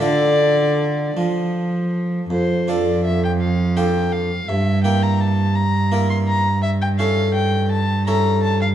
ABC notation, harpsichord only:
X:1
M:6/8
L:1/8
Q:3/8=56
K:Dm
V:1 name="Harpsichord"
[DFA]6 | z [DFA]3 [DFA]2 | z [B,EB]3 [B,EB]2 | z [^CEA]3 [CEA]2 |]
V:2 name="Harpsichord" clef=bass
D,3 F,3 | F,,6 | G,,6- | G,,6 |]